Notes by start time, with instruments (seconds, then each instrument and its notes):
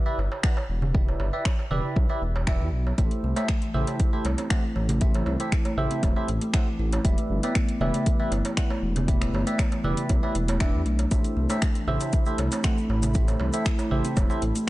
0.06 tine electric piano E4 G4 B4 D5 E5
0.18 detuned saw bass G1, darbuka tek
0.32 darbuka ka
0.43 tine electric piano E4 G4 B4 D5 F#5, finger snap, kick
0.57 darbuka tek
0.69 detuned saw bass E1
0.82 darbuka ka, darbuka dum
0.94 tine electric piano E4 G4 B4 D5 E5, kick
1.08 darbuka tek
1.20 detuned saw bass G1, darbuka ka
1.33 tine electric piano E4 G4 B4 D5 E5
1.45 finger snap, kick, darbuka tek
1.59 darbuka ka
1.71 detuned saw bass E1, tine electric piano E4 G4 B4 D5 E5, darbuka dum
1.96 detuned saw bass B1, kick, darbuka tek
2.09 tine electric piano E4 G4 B4 D5 E5, darbuka ka
2.22 detuned saw bass E1
2.36 darbuka tek
2.47 tine electric piano E4 G4 B4 D5 E5, finger snap, kick
2.60 detuned saw bass E2
2.72 detuned saw bass B1
2.87 darbuka tek
2.98 detuned saw bass A1, kalimba A3, tine electric piano E4 G4 A4 C5 E5, kick, closed hi-hat, darbuka tek
3.11 closed hi-hat
3.23 detuned saw bass C2, kalimba A3
3.36 kalimba A3, tine electric piano E4 G4 A4 C5 E5, closed hi-hat, darbuka tek
3.48 finger snap, kick, closed hi-hat
3.62 kalimba E3, closed hi-hat
3.74 detuned saw bass A1, kalimba E4, tine electric piano E4 G4 A4 C5 E5, darbuka dum
3.87 closed hi-hat, darbuka tek
4.00 kalimba E4, kick, closed hi-hat
4.13 kalimba A3, tine electric piano E4 G4 A4 C5 E5
4.25 detuned saw bass C2, closed hi-hat, darbuka tek
4.38 kalimba C4, closed hi-hat, darbuka ka
4.50 kalimba A3, tine electric piano E4 G4 A4 C5 F#5, finger snap, kick, closed hi-hat
4.76 detuned saw bass A1, kalimba A3, darbuka tek
4.89 kalimba A3, closed hi-hat, darbuka ka, darbuka dum
5.01 tine electric piano E4 G4 A4 C5 E5, kick, closed hi-hat
5.14 kalimba E3, closed hi-hat, darbuka tek
5.26 detuned saw bass C2, kalimba E4, darbuka ka
5.40 tine electric piano E4 G4 A4 C5 E5, closed hi-hat
5.52 kalimba E4, finger snap, kick, closed hi-hat
5.65 kalimba A3, closed hi-hat, darbuka ka, darbuka tek
5.77 detuned saw bass A1, tine electric piano E4 G4 A4 C5 E5, darbuka dum
5.91 kalimba C4, closed hi-hat
6.03 detuned saw bass E1, kalimba A3, kick, closed hi-hat, darbuka tek
6.16 tine electric piano E4 G4 A4 C5 E5, darbuka ka
6.28 detuned saw bass A1, kalimba A3, closed hi-hat
6.41 kalimba A3, closed hi-hat
6.53 tine electric piano E4 G4 A4 C5 F#5, finger snap, kick, closed hi-hat, darbuka tek
6.67 kalimba E3
6.79 detuned saw bass A1, kalimba E4
6.93 closed hi-hat, darbuka tek
7.05 detuned saw bass E1, tine electric piano E4 G4 B4 D5 E5, kalimba E4, kick, closed hi-hat
7.18 kalimba A3, closed hi-hat
7.30 detuned saw bass G1
7.43 kalimba B3, tine electric piano E4 G4 B4 D5 E5, closed hi-hat, darbuka tek
7.55 kalimba A3, finger snap, kick, closed hi-hat
7.69 closed hi-hat
7.81 detuned saw bass E1, kalimba A3, tine electric piano E4 G4 B4 D5 E5, darbuka tek, darbuka dum
7.94 kalimba A3, closed hi-hat
8.06 kick, closed hi-hat
8.20 kalimba E3, tine electric piano E4 G4 B4 D5 E5
8.32 detuned saw bass G1, kalimba E4, closed hi-hat, darbuka tek
8.45 closed hi-hat, darbuka ka
8.57 kalimba E4, tine electric piano E4 G4 B4 D5 F#5, finger snap, kick, closed hi-hat
8.70 kalimba A3, darbuka tek
8.83 detuned saw bass E1
8.96 kalimba B3, closed hi-hat, darbuka ka, darbuka dum
9.08 kalimba A3, tine electric piano E4 G4 B4 D5 E5, kick, closed hi-hat
9.21 finger snap, closed hi-hat, darbuka tek
9.33 detuned saw bass G1, kalimba A3, darbuka ka
9.47 kalimba A3, tine electric piano E4 G4 B4 D5 E5, closed hi-hat
9.58 finger snap, kick, closed hi-hat, darbuka tek
9.72 kalimba E3, closed hi-hat, darbuka ka
9.84 detuned saw bass E1, tine electric piano E4 G4 B4 D5 E5, kalimba E4, darbuka dum
9.97 closed hi-hat
10.09 detuned saw bass B1, kalimba E4, kick, closed hi-hat, darbuka tek
10.23 kalimba A3, tine electric piano E4 G4 B4 D5 E5, darbuka ka
10.35 detuned saw bass E1, kalimba E4, closed hi-hat
10.48 kalimba A3, closed hi-hat, darbuka tek
10.60 kalimba D4, tine electric piano E4 G4 B4 D5 E5, finger snap, kick, closed hi-hat
10.74 detuned saw bass E2
10.86 detuned saw bass B1, kalimba A3, closed hi-hat
10.99 kalimba A3, closed hi-hat, darbuka tek
11.11 detuned saw bass A1, kalimba A3, analog synth pad A3 E4 B5, tine electric piano E4 G4 A4 C5 E5, kick, closed hi-hat, darbuka tek, shaker
11.24 closed hi-hat, shaker
11.36 detuned saw bass C2, kalimba A3
11.50 kalimba A3, tine electric piano E4 G4 A4 C5 E5, closed hi-hat, darbuka tek, shaker
11.62 finger snap, kick, closed hi-hat, shaker
11.75 kalimba E3, closed hi-hat, shaker
11.87 detuned saw bass A1, kalimba E4, tine electric piano E4 G4 A4 C5 E5, darbuka dum
12.00 closed hi-hat, darbuka tek, shaker
12.13 kalimba E4, kick, closed hi-hat, shaker
12.26 kalimba A3, tine electric piano E4 G4 A4 C5 E5, shaker
12.38 detuned saw bass C2, closed hi-hat, darbuka tek
12.52 kalimba C4, closed hi-hat, darbuka ka, shaker
12.64 kalimba A3, tine electric piano E4 G4 A4 C5 F#5, finger snap, kick, closed hi-hat, shaker
12.78 shaker
12.89 detuned saw bass A1, kalimba A3, darbuka tek
13.02 kalimba A3, closed hi-hat, darbuka ka, darbuka dum, shaker
13.14 tine electric piano E4 G4 A4 C5 E5, kick, closed hi-hat, shaker
13.28 kalimba E3, closed hi-hat, darbuka tek, shaker
13.40 detuned saw bass C2, kalimba E4, darbuka ka
13.53 tine electric piano E4 G4 A4 C5 E5, closed hi-hat, shaker
13.65 kalimba E4, finger snap, kick, closed hi-hat, shaker
13.79 kalimba A3, closed hi-hat, darbuka ka, darbuka tek, shaker
13.91 detuned saw bass A1, tine electric piano E4 G4 A4 C5 E5, darbuka dum
14.05 kalimba C4, closed hi-hat, shaker
14.17 detuned saw bass E1, kalimba A3, kick, closed hi-hat, darbuka tek, shaker
14.30 tine electric piano E4 G4 A4 C5 E5, darbuka ka, shaker
14.42 detuned saw bass A1, kalimba A3, closed hi-hat
14.55 kalimba A3, closed hi-hat, shaker